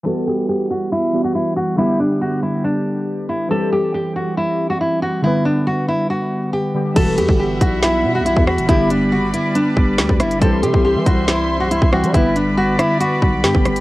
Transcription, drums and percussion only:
6.96 kick loud
6.96 closed hi-hat medium
6.96 crash loud
7.18 closed hi-hat medium
7.29 kick medium
7.61 kick loud
7.61 closed hi-hat medium
7.83 snare loud
7.83 closed hi-hat medium
8.26 closed hi-hat medium
8.36 kick loud
8.47 cross-stick loud
8.58 closed hi-hat medium
8.69 kick loud
8.69 closed hi-hat medium
8.90 closed hi-hat medium
9.34 closed hi-hat medium
9.55 closed hi-hat medium
9.77 kick medium
9.98 snare loud
9.98 closed hi-hat medium
10.09 kick loud
10.20 cross-stick loud
10.20 closed hi-hat medium
10.31 closed hi-hat medium
10.41 kick loud
10.41 closed hi-hat medium
10.63 closed hi-hat medium
10.74 kick medium
11.06 kick loud
11.06 closed hi-hat medium
11.28 snare loud
11.28 closed hi-hat medium
11.71 closed hi-hat medium
11.82 kick loud
11.93 cross-stick medium
12.04 closed hi-hat medium
12.14 kick loud
12.14 closed hi-hat medium
12.36 closed hi-hat medium
12.79 cross-stick loud
12.79 closed hi-hat medium
13.01 closed hi-hat medium
13.22 kick medium
13.44 snare loud
13.44 closed hi-hat medium
13.54 kick loud
13.65 cross-stick medium
13.65 closed hi-hat medium
13.65 open hi-hat medium
13.76 closed hi-hat medium

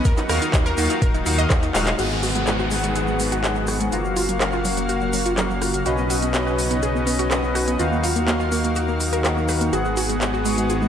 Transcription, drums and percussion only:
0.05 kick loud
0.05 closed hi-hat medium
0.05 shaker soft
0.17 clap soft
0.17 closed hi-hat soft
0.17 shaker soft
0.29 cross-stick medium
0.29 open hi-hat loud
0.29 shaker medium
0.42 closed hi-hat medium
0.42 shaker soft
0.54 kick loud
0.54 clap loud
0.54 closed hi-hat medium
0.54 shaker medium
0.66 closed hi-hat soft
0.66 shaker soft
0.77 open hi-hat medium
0.77 shaker medium
0.90 closed hi-hat medium
0.90 shaker soft
1.02 kick loud
1.02 closed hi-hat medium
1.02 shaker soft
1.14 closed hi-hat soft
1.14 shaker soft
1.26 open hi-hat loud
1.26 shaker loud
1.38 closed hi-hat medium
1.38 shaker soft
1.50 kick loud
1.50 clap loud
1.50 closed hi-hat medium
1.50 shaker soft
1.63 closed hi-hat soft
1.63 shaker soft
1.75 clap medium
1.75 open hi-hat medium
1.75 shaker loud
1.87 clap loud
1.87 closed hi-hat medium
1.87 shaker soft
1.99 closed hi-hat soft
1.99 crash medium
1.99 shaker soft
2.11 shaker soft
2.23 open hi-hat loud
2.23 shaker medium
2.35 closed hi-hat medium
2.35 shaker soft
2.47 clap loud
2.47 closed hi-hat medium
2.47 shaker soft
2.59 shaker soft
2.71 open hi-hat medium
2.71 shaker medium
2.84 closed hi-hat medium
2.84 shaker soft
2.95 closed hi-hat soft
2.95 shaker soft
3.07 shaker soft
3.19 open hi-hat medium
3.19 shaker medium
3.32 closed hi-hat medium
3.32 shaker soft
3.44 clap loud
3.44 closed hi-hat soft
3.44 shaker soft
3.55 shaker soft
3.67 cross-stick medium
3.67 open hi-hat medium
3.67 shaker medium
3.81 closed hi-hat medium
3.81 shaker soft
3.92 closed hi-hat soft
3.92 shaker soft
4.05 shaker soft
4.16 open hi-hat medium
4.16 shaker medium
4.29 closed hi-hat medium
4.29 shaker soft
4.41 clap loud
4.41 closed hi-hat medium
4.41 shaker soft
4.52 shaker soft
4.65 open hi-hat medium
4.65 shaker medium
4.77 closed hi-hat medium
4.77 shaker soft
4.89 closed hi-hat soft
4.89 shaker soft
5.01 shaker soft
5.13 open hi-hat loud
5.13 shaker medium
5.26 closed hi-hat medium
5.26 shaker soft
5.37 clap loud
5.37 closed hi-hat soft
5.37 shaker soft
5.51 shaker soft
5.62 cross-stick medium
5.62 open hi-hat medium
5.62 shaker medium
5.73 closed hi-hat medium
5.73 shaker soft
5.86 closed hi-hat soft
5.86 shaker soft
5.98 shaker soft
6.10 open hi-hat loud
6.10 shaker medium
6.22 closed hi-hat medium
6.22 shaker soft
6.34 clap loud
6.34 closed hi-hat soft
6.34 shaker medium
6.47 shaker soft
6.59 open hi-hat medium
6.59 shaker medium
6.71 closed hi-hat medium
6.71 shaker soft
6.82 closed hi-hat soft
6.82 shaker soft
6.96 shaker soft
7.07 open hi-hat loud
7.07 shaker medium
7.19 closed hi-hat medium
7.19 shaker soft
7.31 clap loud
7.31 closed hi-hat soft
7.31 shaker medium
7.44 shaker soft
7.55 cross-stick medium
7.55 open hi-hat medium
7.55 shaker medium
7.68 closed hi-hat medium
7.68 shaker soft
7.79 closed hi-hat soft
7.79 shaker soft
7.93 shaker soft
8.04 open hi-hat loud
8.04 shaker medium
8.16 closed hi-hat medium
8.16 shaker soft
8.28 clap loud
8.28 closed hi-hat soft
8.28 shaker soft
8.40 shaker soft
8.52 open hi-hat medium
8.52 shaker medium
8.64 closed hi-hat medium
8.64 shaker soft
8.75 closed hi-hat soft
8.75 shaker medium
8.88 shaker soft
9.00 open hi-hat loud
9.00 shaker medium
9.13 closed hi-hat medium
9.13 shaker soft
9.24 clap loud
9.24 closed hi-hat soft
9.24 shaker medium
9.38 shaker soft
9.48 cross-stick medium
9.48 open hi-hat medium
9.48 shaker medium
9.61 closed hi-hat medium
9.61 shaker soft
9.73 closed hi-hat soft
9.73 shaker soft
9.85 shaker soft
9.97 open hi-hat loud
9.97 shaker medium
10.10 closed hi-hat medium
10.10 shaker soft
10.21 clap loud
10.21 closed hi-hat soft
10.21 shaker soft
10.34 shaker soft
10.45 open hi-hat medium
10.45 shaker medium
10.58 closed hi-hat medium
10.58 shaker soft
10.70 closed hi-hat soft
10.70 shaker soft
10.82 shaker soft

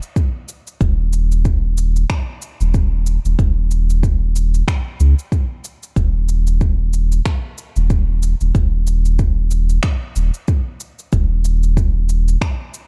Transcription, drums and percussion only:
0.03 cabasa soft
0.16 kick loud
0.16 cabasa soft
0.48 cabasa medium
0.67 cabasa soft
0.81 kick loud
0.81 cabasa soft
1.13 cabasa medium
1.32 cabasa soft
1.45 kick loud
1.45 cabasa soft
1.77 cabasa medium
1.96 cabasa soft
2.10 finger snap medium
2.10 kick loud
2.10 cabasa soft
2.42 cabasa medium
2.61 cabasa soft
2.74 kick loud
2.74 cabasa soft
3.06 cabasa medium
3.25 cabasa soft
3.39 kick loud
3.39 cabasa soft
3.71 cabasa medium
3.90 cabasa soft
4.03 kick loud
4.03 cabasa soft
4.36 cabasa medium
4.54 cabasa soft
4.68 finger snap medium
4.68 kick loud
4.68 cabasa soft
5.00 cabasa medium
5.19 cabasa soft
5.32 kick loud
5.32 cabasa soft
5.64 cabasa medium
5.83 cabasa soft
5.96 kick medium
5.96 cabasa soft
6.29 cabasa medium
6.47 cabasa soft
6.61 kick loud
6.61 cabasa soft
6.93 cabasa medium
7.12 cabasa soft
7.26 finger snap medium
7.26 kick loud
7.26 cabasa soft
7.58 cabasa medium
7.76 cabasa soft
7.90 kick loud
7.90 cabasa soft
8.23 cabasa medium
8.41 cabasa soft
8.55 kick loud
8.55 cabasa soft
8.87 cabasa medium
9.05 cabasa soft
9.19 kick loud
9.19 cabasa soft
9.51 cabasa medium
9.69 cabasa soft
9.83 finger snap medium
9.83 kick loud
9.83 cabasa soft
10.16 cabasa medium
10.34 cabasa soft
10.48 kick loud
10.48 cabasa soft
10.80 cabasa medium
10.99 cabasa soft
11.12 kick medium
11.12 cabasa soft
11.45 cabasa medium
11.63 cabasa soft
11.77 kick medium
11.77 cabasa soft
12.09 cabasa medium
12.28 cabasa soft
12.41 finger snap medium
12.41 kick medium
12.41 cabasa soft
12.74 cabasa medium

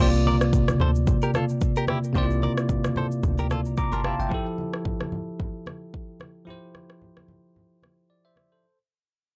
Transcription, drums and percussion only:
0.14 shaker soft
0.26 high conga medium
0.41 cross-stick medium
0.41 shaker medium
0.53 kick loud
0.53 low conga medium
0.53 shaker medium
0.68 cross-stick medium
0.68 high conga medium
0.68 shaker medium
0.80 high conga medium
0.80 low conga medium
0.95 shaker medium
1.07 kick loud
1.07 low conga medium
1.07 shaker medium
1.22 shaker medium
1.34 cross-stick medium
1.34 high conga medium
1.34 shaker soft
1.49 shaker soft
1.61 kick loud
1.61 shaker medium
1.76 shaker medium
1.87 cross-stick medium
1.87 high conga medium
2.04 shaker medium
2.15 kick loud
2.15 low conga medium
2.15 shaker medium
2.31 shaker soft
2.42 high conga medium
2.57 cross-stick medium
2.57 shaker medium
2.69 kick medium
2.69 low conga medium
2.69 shaker medium
2.84 cross-stick medium
2.84 high conga medium
2.84 shaker medium
2.96 high conga medium
2.96 low conga medium
3.12 shaker medium
3.23 kick loud
3.23 low conga medium
3.23 shaker medium
3.38 shaker medium
3.50 cross-stick medium
3.50 high conga medium
3.50 shaker soft
3.65 shaker soft
3.77 kick loud
3.77 shaker medium
3.92 shaker medium
4.04 cross-stick medium
4.04 high conga medium
4.20 shaker medium
4.31 kick loud
4.31 low conga medium
4.58 high conga medium
4.74 cross-stick medium
4.85 kick loud
4.85 low conga medium
5.01 cross-stick medium
5.01 high conga medium
5.12 high conga medium
5.12 low conga medium
5.40 kick loud
5.40 low conga medium
5.66 cross-stick medium
5.66 high conga medium
5.94 kick medium
6.20 cross-stick medium
6.20 high conga medium
6.48 low conga medium
6.75 cross-stick medium
6.75 high conga medium
6.90 cross-stick medium
7.02 low conga medium
7.17 cross-stick medium
7.17 high conga medium
7.28 high conga medium
7.28 low conga medium
7.56 low conga medium
7.83 cross-stick medium
7.83 high conga medium
8.36 cross-stick medium
8.36 high conga medium

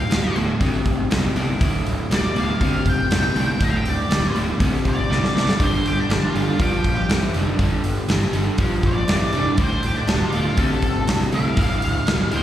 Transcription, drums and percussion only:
0.11 snare loud
0.11 open hi-hat medium
0.36 open hi-hat soft
0.61 kick medium
0.61 open hi-hat medium
0.86 kick medium
0.86 open hi-hat soft
1.11 snare loud
1.11 open hi-hat medium
1.36 open hi-hat soft
1.61 kick loud
1.61 open hi-hat medium
1.86 open hi-hat medium
2.11 snare loud
2.11 open hi-hat medium
2.36 open hi-hat medium
2.61 kick loud
2.61 open hi-hat medium
2.86 kick medium
2.86 open hi-hat medium
3.11 snare loud
3.11 open hi-hat medium
3.36 open hi-hat medium
3.61 kick loud
3.61 open hi-hat medium
3.85 open hi-hat medium
4.11 snare loud
4.11 open hi-hat medium
4.36 open hi-hat medium
4.60 kick loud
4.60 open hi-hat medium
4.85 kick medium
4.85 open hi-hat soft
5.12 snare medium
5.24 snare medium
5.37 snare medium
5.49 snare medium
5.60 kick loud
5.60 open hi-hat medium
5.86 open hi-hat medium
6.10 snare loud
6.10 open hi-hat medium
6.36 open hi-hat medium
6.60 kick loud
6.60 open hi-hat medium
6.84 kick medium
6.84 open hi-hat soft
7.10 snare loud
7.10 open hi-hat medium
7.34 open hi-hat medium
7.59 kick loud
7.59 open hi-hat medium
7.84 open hi-hat medium
8.09 snare loud
8.09 open hi-hat medium
8.33 open hi-hat medium
8.58 kick loud
8.58 open hi-hat medium
8.83 kick medium
8.83 open hi-hat soft
9.08 snare loud
9.08 open hi-hat medium
9.33 open hi-hat soft
9.57 kick loud
9.57 open hi-hat medium
9.83 open hi-hat medium
10.08 snare loud
10.08 open hi-hat medium
10.32 open hi-hat soft
10.57 kick loud
10.57 open hi-hat medium
10.82 kick medium
10.82 open hi-hat soft
11.08 snare loud
11.08 open hi-hat medium
11.32 open hi-hat medium
11.57 kick loud
11.57 open hi-hat medium
11.82 open hi-hat medium
12.07 snare loud
12.07 open hi-hat medium
12.32 open hi-hat medium

